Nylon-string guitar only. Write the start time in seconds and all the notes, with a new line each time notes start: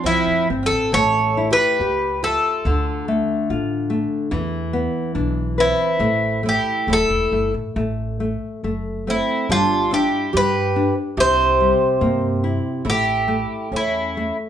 0.06 F3
0.50 C4
0.94 A3
1.37 E4
1.81 G4
2.24 E5
2.66 D3
3.08 A3
3.50 F4
3.90 A3
4.31 E3
4.73 B3
5.15 D4
5.58 B4
6.00 A3
6.43 A3
6.88 A3
7.32 A3
7.76 A3
8.20 A3
8.64 A3
9.07 A3
9.50 G3
9.93 D4
10.34 G3
10.76 D4
11.17 C3
11.60 G3
12.01 A#3
12.44 E4
12.85 A3
13.28 A3
13.73 A3
14.17 A3